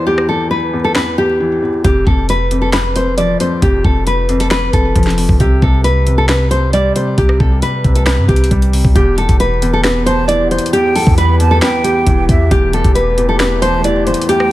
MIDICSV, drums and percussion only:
0, 0, Header, 1, 2, 480
1, 0, Start_track
1, 0, Tempo, 444444
1, 72, Time_signature, 4, 2, 24, 8
1, 15682, End_track
2, 0, Start_track
2, 0, Title_t, "Drums"
2, 192, Note_on_c, 9, 37, 98
2, 300, Note_off_c, 9, 37, 0
2, 1028, Note_on_c, 9, 26, 96
2, 1031, Note_on_c, 9, 38, 114
2, 1136, Note_off_c, 9, 26, 0
2, 1139, Note_off_c, 9, 38, 0
2, 1992, Note_on_c, 9, 36, 116
2, 1992, Note_on_c, 9, 42, 78
2, 2100, Note_off_c, 9, 36, 0
2, 2100, Note_off_c, 9, 42, 0
2, 2232, Note_on_c, 9, 36, 93
2, 2340, Note_off_c, 9, 36, 0
2, 2471, Note_on_c, 9, 42, 79
2, 2579, Note_off_c, 9, 42, 0
2, 2711, Note_on_c, 9, 42, 77
2, 2819, Note_off_c, 9, 42, 0
2, 2949, Note_on_c, 9, 26, 94
2, 2951, Note_on_c, 9, 38, 114
2, 2953, Note_on_c, 9, 42, 80
2, 3057, Note_off_c, 9, 26, 0
2, 3059, Note_off_c, 9, 38, 0
2, 3061, Note_off_c, 9, 42, 0
2, 3193, Note_on_c, 9, 42, 77
2, 3301, Note_off_c, 9, 42, 0
2, 3431, Note_on_c, 9, 42, 85
2, 3539, Note_off_c, 9, 42, 0
2, 3673, Note_on_c, 9, 42, 93
2, 3781, Note_off_c, 9, 42, 0
2, 3912, Note_on_c, 9, 36, 117
2, 3912, Note_on_c, 9, 42, 81
2, 4020, Note_off_c, 9, 36, 0
2, 4020, Note_off_c, 9, 42, 0
2, 4152, Note_on_c, 9, 36, 93
2, 4260, Note_off_c, 9, 36, 0
2, 4392, Note_on_c, 9, 42, 81
2, 4500, Note_off_c, 9, 42, 0
2, 4632, Note_on_c, 9, 42, 50
2, 4740, Note_off_c, 9, 42, 0
2, 4753, Note_on_c, 9, 42, 78
2, 4861, Note_off_c, 9, 42, 0
2, 4868, Note_on_c, 9, 26, 92
2, 4871, Note_on_c, 9, 38, 120
2, 4873, Note_on_c, 9, 42, 76
2, 4976, Note_off_c, 9, 26, 0
2, 4979, Note_off_c, 9, 38, 0
2, 4981, Note_off_c, 9, 42, 0
2, 5111, Note_on_c, 9, 36, 93
2, 5113, Note_on_c, 9, 42, 78
2, 5219, Note_off_c, 9, 36, 0
2, 5221, Note_off_c, 9, 42, 0
2, 5352, Note_on_c, 9, 36, 94
2, 5352, Note_on_c, 9, 42, 87
2, 5431, Note_off_c, 9, 42, 0
2, 5431, Note_on_c, 9, 42, 70
2, 5460, Note_off_c, 9, 36, 0
2, 5471, Note_on_c, 9, 38, 68
2, 5512, Note_off_c, 9, 42, 0
2, 5512, Note_on_c, 9, 42, 50
2, 5579, Note_off_c, 9, 38, 0
2, 5592, Note_on_c, 9, 46, 66
2, 5620, Note_off_c, 9, 42, 0
2, 5700, Note_off_c, 9, 46, 0
2, 5713, Note_on_c, 9, 36, 106
2, 5821, Note_off_c, 9, 36, 0
2, 5831, Note_on_c, 9, 42, 77
2, 5832, Note_on_c, 9, 36, 118
2, 5939, Note_off_c, 9, 42, 0
2, 5940, Note_off_c, 9, 36, 0
2, 6072, Note_on_c, 9, 36, 93
2, 6180, Note_off_c, 9, 36, 0
2, 6311, Note_on_c, 9, 42, 82
2, 6419, Note_off_c, 9, 42, 0
2, 6552, Note_on_c, 9, 42, 78
2, 6660, Note_off_c, 9, 42, 0
2, 6788, Note_on_c, 9, 26, 91
2, 6791, Note_on_c, 9, 38, 116
2, 6793, Note_on_c, 9, 42, 78
2, 6896, Note_off_c, 9, 26, 0
2, 6899, Note_off_c, 9, 38, 0
2, 6901, Note_off_c, 9, 42, 0
2, 7032, Note_on_c, 9, 42, 78
2, 7140, Note_off_c, 9, 42, 0
2, 7270, Note_on_c, 9, 42, 86
2, 7378, Note_off_c, 9, 42, 0
2, 7513, Note_on_c, 9, 42, 91
2, 7621, Note_off_c, 9, 42, 0
2, 7752, Note_on_c, 9, 36, 122
2, 7752, Note_on_c, 9, 42, 79
2, 7860, Note_off_c, 9, 36, 0
2, 7860, Note_off_c, 9, 42, 0
2, 7872, Note_on_c, 9, 37, 97
2, 7980, Note_off_c, 9, 37, 0
2, 7993, Note_on_c, 9, 36, 97
2, 8101, Note_off_c, 9, 36, 0
2, 8232, Note_on_c, 9, 42, 78
2, 8340, Note_off_c, 9, 42, 0
2, 8472, Note_on_c, 9, 36, 98
2, 8472, Note_on_c, 9, 42, 46
2, 8580, Note_off_c, 9, 36, 0
2, 8580, Note_off_c, 9, 42, 0
2, 8592, Note_on_c, 9, 42, 80
2, 8700, Note_off_c, 9, 42, 0
2, 8708, Note_on_c, 9, 26, 95
2, 8711, Note_on_c, 9, 38, 118
2, 8713, Note_on_c, 9, 42, 75
2, 8816, Note_off_c, 9, 26, 0
2, 8819, Note_off_c, 9, 38, 0
2, 8821, Note_off_c, 9, 42, 0
2, 8951, Note_on_c, 9, 36, 90
2, 8952, Note_on_c, 9, 42, 47
2, 9032, Note_off_c, 9, 42, 0
2, 9032, Note_on_c, 9, 42, 64
2, 9059, Note_off_c, 9, 36, 0
2, 9112, Note_off_c, 9, 42, 0
2, 9112, Note_on_c, 9, 42, 82
2, 9192, Note_off_c, 9, 42, 0
2, 9192, Note_on_c, 9, 36, 93
2, 9192, Note_on_c, 9, 42, 73
2, 9300, Note_off_c, 9, 36, 0
2, 9300, Note_off_c, 9, 42, 0
2, 9312, Note_on_c, 9, 42, 72
2, 9420, Note_off_c, 9, 42, 0
2, 9432, Note_on_c, 9, 46, 65
2, 9540, Note_off_c, 9, 46, 0
2, 9553, Note_on_c, 9, 36, 101
2, 9661, Note_off_c, 9, 36, 0
2, 9672, Note_on_c, 9, 36, 122
2, 9672, Note_on_c, 9, 42, 84
2, 9780, Note_off_c, 9, 36, 0
2, 9780, Note_off_c, 9, 42, 0
2, 9912, Note_on_c, 9, 42, 54
2, 9912, Note_on_c, 9, 46, 72
2, 10020, Note_off_c, 9, 42, 0
2, 10020, Note_off_c, 9, 46, 0
2, 10032, Note_on_c, 9, 36, 97
2, 10032, Note_on_c, 9, 42, 56
2, 10140, Note_off_c, 9, 36, 0
2, 10140, Note_off_c, 9, 42, 0
2, 10151, Note_on_c, 9, 42, 76
2, 10259, Note_off_c, 9, 42, 0
2, 10392, Note_on_c, 9, 42, 84
2, 10500, Note_off_c, 9, 42, 0
2, 10628, Note_on_c, 9, 26, 98
2, 10631, Note_on_c, 9, 38, 120
2, 10633, Note_on_c, 9, 42, 78
2, 10736, Note_off_c, 9, 26, 0
2, 10739, Note_off_c, 9, 38, 0
2, 10741, Note_off_c, 9, 42, 0
2, 10872, Note_on_c, 9, 42, 87
2, 10980, Note_off_c, 9, 42, 0
2, 11110, Note_on_c, 9, 42, 95
2, 11218, Note_off_c, 9, 42, 0
2, 11352, Note_on_c, 9, 42, 54
2, 11432, Note_off_c, 9, 42, 0
2, 11432, Note_on_c, 9, 42, 74
2, 11512, Note_off_c, 9, 42, 0
2, 11512, Note_on_c, 9, 42, 95
2, 11592, Note_off_c, 9, 42, 0
2, 11592, Note_on_c, 9, 42, 83
2, 11700, Note_off_c, 9, 42, 0
2, 11831, Note_on_c, 9, 46, 75
2, 11939, Note_off_c, 9, 46, 0
2, 11952, Note_on_c, 9, 36, 100
2, 12060, Note_off_c, 9, 36, 0
2, 12072, Note_on_c, 9, 42, 73
2, 12180, Note_off_c, 9, 42, 0
2, 12312, Note_on_c, 9, 42, 79
2, 12420, Note_off_c, 9, 42, 0
2, 12548, Note_on_c, 9, 26, 96
2, 12551, Note_on_c, 9, 38, 117
2, 12553, Note_on_c, 9, 42, 81
2, 12656, Note_off_c, 9, 26, 0
2, 12659, Note_off_c, 9, 38, 0
2, 12661, Note_off_c, 9, 42, 0
2, 12792, Note_on_c, 9, 42, 85
2, 12900, Note_off_c, 9, 42, 0
2, 13031, Note_on_c, 9, 42, 94
2, 13032, Note_on_c, 9, 36, 97
2, 13139, Note_off_c, 9, 42, 0
2, 13140, Note_off_c, 9, 36, 0
2, 13272, Note_on_c, 9, 36, 97
2, 13273, Note_on_c, 9, 42, 84
2, 13380, Note_off_c, 9, 36, 0
2, 13381, Note_off_c, 9, 42, 0
2, 13512, Note_on_c, 9, 36, 126
2, 13512, Note_on_c, 9, 42, 82
2, 13620, Note_off_c, 9, 36, 0
2, 13620, Note_off_c, 9, 42, 0
2, 13752, Note_on_c, 9, 46, 71
2, 13753, Note_on_c, 9, 42, 56
2, 13860, Note_off_c, 9, 46, 0
2, 13861, Note_off_c, 9, 42, 0
2, 13872, Note_on_c, 9, 36, 103
2, 13872, Note_on_c, 9, 42, 54
2, 13980, Note_off_c, 9, 36, 0
2, 13980, Note_off_c, 9, 42, 0
2, 13992, Note_on_c, 9, 42, 75
2, 14100, Note_off_c, 9, 42, 0
2, 14232, Note_on_c, 9, 42, 84
2, 14340, Note_off_c, 9, 42, 0
2, 14469, Note_on_c, 9, 26, 97
2, 14471, Note_on_c, 9, 38, 118
2, 14473, Note_on_c, 9, 42, 79
2, 14577, Note_off_c, 9, 26, 0
2, 14579, Note_off_c, 9, 38, 0
2, 14581, Note_off_c, 9, 42, 0
2, 14712, Note_on_c, 9, 42, 89
2, 14820, Note_off_c, 9, 42, 0
2, 14950, Note_on_c, 9, 42, 90
2, 15058, Note_off_c, 9, 42, 0
2, 15192, Note_on_c, 9, 42, 53
2, 15272, Note_off_c, 9, 42, 0
2, 15272, Note_on_c, 9, 42, 72
2, 15352, Note_off_c, 9, 42, 0
2, 15352, Note_on_c, 9, 42, 91
2, 15432, Note_off_c, 9, 42, 0
2, 15432, Note_on_c, 9, 42, 81
2, 15540, Note_off_c, 9, 42, 0
2, 15553, Note_on_c, 9, 37, 100
2, 15661, Note_off_c, 9, 37, 0
2, 15682, End_track
0, 0, End_of_file